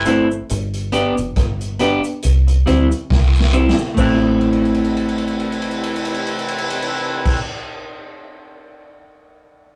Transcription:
0.00 0.39 G1 loud
0.00 0.26 C3 loud
0.00 0.26 E3 loud
0.00 0.26 A3 loud
0.00 0.26 E4 loud
0.05 0.26 A3 medium
0.05 0.25 C4 medium
0.05 0.27 C4 medium
0.05 0.26 E4 medium
0.05 0.27 E4 medium
0.05 0.26 A4 medium
0.05 0.26 C5 loud
0.05 closed hi-hat medium
0.05 cabasa medium
0.31 0.38 A4 soft
0.31 0.38 C5 soft
0.31 cabasa medium
0.49 1.10 G1 loud
0.49 closed hi-hat medium
0.49 cabasa medium
0.73 closed hi-hat medium
0.92 1.13 B3 medium
0.92 1.12 B3 medium
0.92 1.13 D4 medium
0.92 1.14 G4 medium
0.92 1.13 G4 medium
0.92 1.13 B4 loud
0.92 closed hi-hat medium
0.92 cabasa medium
1.17 1.35 F1 medium
1.17 closed hi-hat soft
1.17 cabasa medium
1.36 1.96 G1 medium
1.36 kick loud
1.36 cross-stick loud
1.36 closed hi-hat medium
1.61 closed hi-hat soft
1.61 cabasa soft
1.79 2.00 B3 medium
1.79 1.99 B3 medium
1.79 2.01 D4 medium
1.79 2.00 D4 medium
1.79 2.00 G4 medium
1.79 2.01 G4 loud
1.79 2.00 B4 medium
1.79 closed hi-hat medium
2.04 closed hi-hat soft
2.04 cabasa medium
2.22 2.62 C2 loud
2.22 closed hi-hat medium
2.22 cabasa medium
2.47 muted clean electric guitar stroke soft
2.47 closed hi-hat medium
2.66 2.89 D2 medium
2.66 2.87 G3 medium
2.66 2.86 C4 medium
2.66 2.88 C4 loud
2.66 2.86 E4 medium
2.66 2.88 E4 medium
2.66 2.87 G4 medium
2.66 2.87 C5 loud
2.66 closed hi-hat medium
2.91 closed hi-hat soft
2.91 cabasa medium
3.10 3.70 C2 medium
3.10 kick loud
3.10 snare medium
3.10 long guiro medium
3.35 cabasa soft
3.40 snare medium
3.53 3.74 G3 medium
3.53 3.73 C4 medium
3.53 3.74 C4 medium
3.53 3.73 E4 medium
3.53 3.75 E4 loud
3.53 3.73 G4 medium
3.53 3.73 C5 loud
3.53 cabasa medium
3.69 snare loud
3.78 3.86 G4 soft
3.78 3.86 C5 soft
3.78 cabasa medium
3.94 7.38 A1 loud
3.94 7.37 C3 loud
3.94 7.37 E3 medium
3.94 7.44 A3 medium
3.94 7.37 A3 medium
3.94 7.37 C4 medium
3.94 7.48 C4 medium
3.94 7.37 E4 loud
3.94 7.38 E4 medium
3.94 7.38 A4 medium
3.94 7.38 C5 medium
3.94 kick loud
3.94 crash medium
3.94 cabasa medium
4.00 7.50 E4 medium
4.41 crash soft
4.53 ride soft
4.65 crash soft
4.74 ride medium
4.84 crash medium
4.97 ride medium
5.08 crash medium
5.18 ride medium
5.28 crash medium
5.40 ride medium
5.52 crash medium
5.62 ride medium
5.71 crash medium
5.83 ride medium
5.96 crash medium
6.05 ride medium
6.14 crash medium
6.27 ride medium
6.39 crash medium
6.48 ride medium
6.58 crash medium
6.70 ride medium
6.82 crash loud
7.25 kick loud
7.25 crash loud

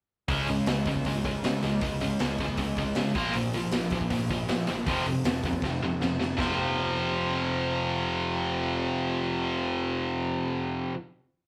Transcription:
0.28 0.58 C#2 medium
0.28 0.47 C#3 medium
0.28 0.47 G#3 medium
0.28 0.48 C#4 medium
0.28 kick loud
0.28 open hi-hat medium
0.47 0.66 C#3 medium
0.47 0.66 G#3 medium
0.47 open hi-hat medium
0.66 0.82 C#2 medium
0.66 0.85 C#3 medium
0.66 0.85 G#3 medium
0.66 snare loud
0.66 open hi-hat medium
0.85 1.01 C#2 medium
0.85 1.04 C#3 medium
0.85 1.04 G#3 medium
0.85 kick medium
0.85 open hi-hat medium
0.96 kick medium
1.05 1.20 C#2 medium
1.05 1.23 C#3 medium
1.05 1.23 G#3 medium
1.05 kick medium
1.05 open hi-hat medium
1.24 1.39 C#2 medium
1.24 1.42 C#3 medium
1.24 1.42 G#3 medium
1.24 kick medium
1.24 open hi-hat medium
1.43 1.58 C#3 medium
1.43 1.61 C#3 medium
1.43 1.62 G#3 medium
1.43 snare loud
1.43 open hi-hat medium
1.62 1.77 C#2 medium
1.62 1.80 C#3 medium
1.62 1.81 G#3 medium
1.62 open hi-hat medium
1.81 2.11 C#2 medium
1.81 1.99 C#3 medium
1.81 1.99 G#3 medium
1.81 kick loud
1.81 open hi-hat medium
2.00 2.18 C#3 medium
2.00 2.19 G#3 medium
2.00 open hi-hat medium
2.19 2.34 C#2 medium
2.19 2.37 C#3 medium
2.19 2.38 G#3 medium
2.19 snare loud
2.19 open hi-hat medium
2.38 2.54 C#2 medium
2.38 2.57 C#3 medium
2.38 2.57 G#3 medium
2.38 kick medium
2.38 open hi-hat medium
2.48 kick medium
2.57 2.72 C#2 medium
2.57 2.75 C#3 medium
2.57 2.76 G#3 medium
2.57 kick medium
2.57 open hi-hat medium
2.77 2.92 C#2 medium
2.77 2.95 C#3 medium
2.77 2.95 G#3 medium
2.77 kick medium
2.77 open hi-hat soft
2.95 3.10 C#3 medium
2.95 3.14 C#3 medium
2.95 3.14 G#3 medium
2.95 snare loud
2.95 open hi-hat medium
3.15 3.30 A#1 medium
3.15 3.33 A#2 medium
3.15 3.34 F3 medium
3.15 3.34 A#3 loud
3.15 kick loud
3.15 open hi-hat medium
3.33 3.64 A#1 medium
3.33 3.52 A#2 medium
3.33 3.52 F3 medium
3.33 open hi-hat medium
3.53 3.71 A#2 medium
3.53 3.71 F3 medium
3.53 open hi-hat medium
3.71 3.86 A#1 medium
3.71 3.90 A#2 medium
3.71 3.90 F3 medium
3.71 snare loud
3.71 open hi-hat medium
3.90 4.06 A#1 medium
3.90 4.09 A#2 medium
3.90 4.09 F3 medium
3.90 kick medium
3.90 open hi-hat medium
4.01 kick medium
4.10 4.25 A#1 loud
4.10 4.28 A#2 medium
4.10 4.27 F3 medium
4.10 kick medium
4.10 open hi-hat medium
4.29 4.44 A#1 medium
4.29 4.47 A#2 medium
4.29 4.47 F3 medium
4.29 kick medium
4.29 open hi-hat medium
4.48 4.63 A#2 medium
4.48 4.66 A#2 medium
4.48 4.66 F3 medium
4.48 snare loud
4.48 open hi-hat medium
4.67 4.83 A#1 medium
4.67 4.85 A#2 medium
4.67 4.86 F3 medium
4.67 open hi-hat medium
4.86 5.16 F1 medium
4.86 5.05 F2 medium
4.86 5.05 C3 loud
4.86 5.05 F3 loud
4.86 kick loud
4.86 open hi-hat medium
5.06 5.23 F2 medium
5.06 5.23 C3 medium
5.06 open hi-hat medium
5.24 5.39 F1 medium
5.24 5.42 F2 medium
5.24 5.42 C3 medium
5.24 snare loud
5.24 open hi-hat medium
5.43 5.58 F1 medium
5.43 5.61 F2 medium
5.43 5.61 C3 medium
5.43 kick medium
5.43 open hi-hat medium
5.53 kick medium
5.62 5.77 F1 medium
5.62 5.80 F2 medium
5.62 5.80 C3 medium
5.62 kick medium
5.62 snare medium
5.81 5.96 F1 medium
5.81 5.99 F2 medium
5.81 5.99 C3 medium
6.00 6.15 F2 medium
6.00 6.18 F2 medium
6.00 6.18 C3 medium
6.00 snare medium
6.20 6.34 F1 medium
6.20 6.36 F2 medium
6.20 6.37 C3 medium
6.20 snare medium
6.37 10.90 F1 loud
6.37 10.93 F2 medium
6.37 10.94 C3 medium
6.37 10.95 F3 loud
6.37 kick loud
6.37 snare loud

